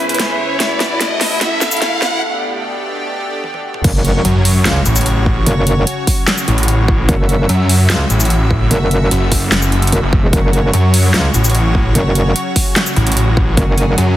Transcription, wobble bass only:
0, 0, Header, 1, 2, 480
1, 0, Start_track
1, 0, Key_signature, 3, "minor"
1, 0, Tempo, 405405
1, 710, Time_signature, 4, 2, 24, 8
1, 16775, End_track
2, 0, Start_track
2, 0, Title_t, "Wobble bass"
2, 0, Program_c, 0, 39
2, 4551, Note_on_c, 0, 30, 97
2, 5012, Note_off_c, 0, 30, 0
2, 5511, Note_on_c, 0, 37, 104
2, 5732, Note_off_c, 0, 37, 0
2, 6471, Note_on_c, 0, 30, 98
2, 6932, Note_off_c, 0, 30, 0
2, 8391, Note_on_c, 0, 30, 96
2, 8852, Note_off_c, 0, 30, 0
2, 9351, Note_on_c, 0, 37, 103
2, 9572, Note_off_c, 0, 37, 0
2, 10311, Note_on_c, 0, 30, 98
2, 10772, Note_off_c, 0, 30, 0
2, 11751, Note_on_c, 0, 30, 101
2, 11852, Note_off_c, 0, 30, 0
2, 12111, Note_on_c, 0, 28, 95
2, 12212, Note_off_c, 0, 28, 0
2, 12231, Note_on_c, 0, 30, 99
2, 12692, Note_off_c, 0, 30, 0
2, 13191, Note_on_c, 0, 37, 101
2, 13412, Note_off_c, 0, 37, 0
2, 14151, Note_on_c, 0, 30, 99
2, 14612, Note_off_c, 0, 30, 0
2, 16071, Note_on_c, 0, 30, 101
2, 16532, Note_off_c, 0, 30, 0
2, 16775, End_track
0, 0, End_of_file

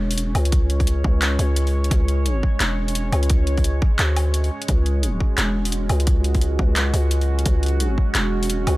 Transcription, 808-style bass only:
0, 0, Header, 1, 2, 480
1, 0, Start_track
1, 0, Key_signature, 4, "minor"
1, 0, Tempo, 346821
1, 722, Time_signature, 4, 2, 24, 8
1, 12142, End_track
2, 0, Start_track
2, 0, Title_t, "808-style bass"
2, 0, Program_c, 0, 38
2, 0, Note_on_c, 0, 28, 98
2, 468, Note_off_c, 0, 28, 0
2, 483, Note_on_c, 0, 37, 100
2, 1427, Note_off_c, 0, 37, 0
2, 1445, Note_on_c, 0, 37, 93
2, 1908, Note_off_c, 0, 37, 0
2, 1923, Note_on_c, 0, 37, 100
2, 2628, Note_off_c, 0, 37, 0
2, 2644, Note_on_c, 0, 37, 101
2, 3348, Note_off_c, 0, 37, 0
2, 3602, Note_on_c, 0, 28, 95
2, 4307, Note_off_c, 0, 28, 0
2, 4324, Note_on_c, 0, 37, 98
2, 5268, Note_off_c, 0, 37, 0
2, 5523, Note_on_c, 0, 38, 91
2, 6227, Note_off_c, 0, 38, 0
2, 6486, Note_on_c, 0, 37, 99
2, 7189, Note_off_c, 0, 37, 0
2, 7445, Note_on_c, 0, 28, 90
2, 8148, Note_off_c, 0, 28, 0
2, 8162, Note_on_c, 0, 37, 99
2, 9107, Note_off_c, 0, 37, 0
2, 9122, Note_on_c, 0, 37, 93
2, 9587, Note_off_c, 0, 37, 0
2, 9598, Note_on_c, 0, 37, 94
2, 10305, Note_off_c, 0, 37, 0
2, 10320, Note_on_c, 0, 37, 97
2, 11026, Note_off_c, 0, 37, 0
2, 11278, Note_on_c, 0, 28, 93
2, 11985, Note_off_c, 0, 28, 0
2, 12001, Note_on_c, 0, 37, 96
2, 12142, Note_off_c, 0, 37, 0
2, 12142, End_track
0, 0, End_of_file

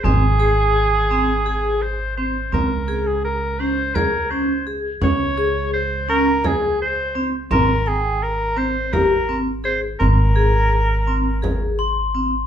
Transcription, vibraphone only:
0, 0, Header, 1, 2, 480
1, 0, Start_track
1, 0, Key_signature, -4, "major"
1, 0, Tempo, 711744
1, 31, Time_signature, 7, 3, 24, 8
1, 8409, End_track
2, 0, Start_track
2, 0, Title_t, "Vibraphone"
2, 0, Program_c, 0, 11
2, 29, Note_on_c, 0, 60, 79
2, 150, Note_off_c, 0, 60, 0
2, 266, Note_on_c, 0, 68, 72
2, 508, Note_off_c, 0, 68, 0
2, 748, Note_on_c, 0, 60, 73
2, 868, Note_off_c, 0, 60, 0
2, 984, Note_on_c, 0, 68, 66
2, 1226, Note_off_c, 0, 68, 0
2, 1468, Note_on_c, 0, 60, 59
2, 1588, Note_off_c, 0, 60, 0
2, 1703, Note_on_c, 0, 60, 64
2, 1824, Note_off_c, 0, 60, 0
2, 1942, Note_on_c, 0, 68, 70
2, 2184, Note_off_c, 0, 68, 0
2, 2427, Note_on_c, 0, 61, 64
2, 2547, Note_off_c, 0, 61, 0
2, 2665, Note_on_c, 0, 68, 55
2, 2785, Note_off_c, 0, 68, 0
2, 2904, Note_on_c, 0, 61, 69
2, 3025, Note_off_c, 0, 61, 0
2, 3147, Note_on_c, 0, 68, 61
2, 3267, Note_off_c, 0, 68, 0
2, 3382, Note_on_c, 0, 61, 75
2, 3503, Note_off_c, 0, 61, 0
2, 3625, Note_on_c, 0, 68, 77
2, 3866, Note_off_c, 0, 68, 0
2, 4104, Note_on_c, 0, 61, 77
2, 4225, Note_off_c, 0, 61, 0
2, 4348, Note_on_c, 0, 68, 73
2, 4589, Note_off_c, 0, 68, 0
2, 4824, Note_on_c, 0, 60, 69
2, 4945, Note_off_c, 0, 60, 0
2, 5064, Note_on_c, 0, 60, 79
2, 5185, Note_off_c, 0, 60, 0
2, 5302, Note_on_c, 0, 79, 72
2, 5544, Note_off_c, 0, 79, 0
2, 5777, Note_on_c, 0, 60, 73
2, 5900, Note_off_c, 0, 60, 0
2, 6022, Note_on_c, 0, 67, 62
2, 6144, Note_off_c, 0, 67, 0
2, 6265, Note_on_c, 0, 60, 72
2, 6386, Note_off_c, 0, 60, 0
2, 6501, Note_on_c, 0, 68, 69
2, 6623, Note_off_c, 0, 68, 0
2, 6742, Note_on_c, 0, 60, 71
2, 6865, Note_off_c, 0, 60, 0
2, 6985, Note_on_c, 0, 68, 76
2, 7228, Note_off_c, 0, 68, 0
2, 7469, Note_on_c, 0, 60, 71
2, 7590, Note_off_c, 0, 60, 0
2, 7704, Note_on_c, 0, 68, 58
2, 7948, Note_off_c, 0, 68, 0
2, 8190, Note_on_c, 0, 60, 62
2, 8312, Note_off_c, 0, 60, 0
2, 8409, End_track
0, 0, End_of_file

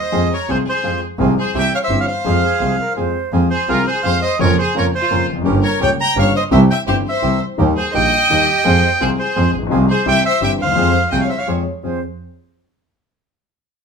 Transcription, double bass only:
0, 0, Header, 1, 2, 480
1, 0, Start_track
1, 0, Key_signature, -4, "minor"
1, 0, Tempo, 355030
1, 177, Time_signature, 3, 2, 24, 8
1, 18722, End_track
2, 0, Start_track
2, 0, Title_t, "Double bass"
2, 0, Program_c, 0, 43
2, 183, Note_on_c, 0, 41, 81
2, 383, Note_off_c, 0, 41, 0
2, 659, Note_on_c, 0, 36, 62
2, 860, Note_off_c, 0, 36, 0
2, 1141, Note_on_c, 0, 41, 56
2, 1340, Note_off_c, 0, 41, 0
2, 1605, Note_on_c, 0, 36, 92
2, 1812, Note_off_c, 0, 36, 0
2, 2089, Note_on_c, 0, 36, 66
2, 2294, Note_off_c, 0, 36, 0
2, 2552, Note_on_c, 0, 31, 59
2, 2763, Note_off_c, 0, 31, 0
2, 3049, Note_on_c, 0, 41, 89
2, 3253, Note_off_c, 0, 41, 0
2, 3528, Note_on_c, 0, 36, 51
2, 3735, Note_off_c, 0, 36, 0
2, 4018, Note_on_c, 0, 41, 55
2, 4225, Note_off_c, 0, 41, 0
2, 4492, Note_on_c, 0, 41, 86
2, 4703, Note_off_c, 0, 41, 0
2, 4989, Note_on_c, 0, 36, 57
2, 5193, Note_off_c, 0, 36, 0
2, 5460, Note_on_c, 0, 41, 62
2, 5668, Note_off_c, 0, 41, 0
2, 5948, Note_on_c, 0, 41, 99
2, 6152, Note_off_c, 0, 41, 0
2, 6454, Note_on_c, 0, 41, 70
2, 6642, Note_off_c, 0, 41, 0
2, 6909, Note_on_c, 0, 41, 64
2, 7106, Note_off_c, 0, 41, 0
2, 7143, Note_on_c, 0, 29, 64
2, 7380, Note_off_c, 0, 29, 0
2, 7391, Note_on_c, 0, 31, 103
2, 7585, Note_off_c, 0, 31, 0
2, 7858, Note_on_c, 0, 37, 69
2, 8055, Note_off_c, 0, 37, 0
2, 8331, Note_on_c, 0, 31, 68
2, 8530, Note_off_c, 0, 31, 0
2, 8811, Note_on_c, 0, 36, 108
2, 9010, Note_off_c, 0, 36, 0
2, 9294, Note_on_c, 0, 31, 60
2, 9494, Note_off_c, 0, 31, 0
2, 9778, Note_on_c, 0, 36, 63
2, 9977, Note_off_c, 0, 36, 0
2, 10262, Note_on_c, 0, 39, 98
2, 10463, Note_off_c, 0, 39, 0
2, 10751, Note_on_c, 0, 34, 63
2, 10948, Note_off_c, 0, 34, 0
2, 11226, Note_on_c, 0, 39, 59
2, 11424, Note_off_c, 0, 39, 0
2, 11705, Note_on_c, 0, 41, 94
2, 11902, Note_off_c, 0, 41, 0
2, 12187, Note_on_c, 0, 36, 65
2, 12381, Note_off_c, 0, 36, 0
2, 12670, Note_on_c, 0, 41, 73
2, 12860, Note_off_c, 0, 41, 0
2, 12900, Note_on_c, 0, 34, 62
2, 13132, Note_off_c, 0, 34, 0
2, 13146, Note_on_c, 0, 36, 90
2, 13336, Note_off_c, 0, 36, 0
2, 13605, Note_on_c, 0, 36, 62
2, 13803, Note_off_c, 0, 36, 0
2, 14079, Note_on_c, 0, 31, 62
2, 14279, Note_off_c, 0, 31, 0
2, 14330, Note_on_c, 0, 39, 63
2, 14550, Note_off_c, 0, 39, 0
2, 14558, Note_on_c, 0, 41, 96
2, 14759, Note_off_c, 0, 41, 0
2, 15045, Note_on_c, 0, 36, 67
2, 15244, Note_off_c, 0, 36, 0
2, 15511, Note_on_c, 0, 41, 61
2, 15721, Note_off_c, 0, 41, 0
2, 16001, Note_on_c, 0, 41, 57
2, 16207, Note_off_c, 0, 41, 0
2, 18722, End_track
0, 0, End_of_file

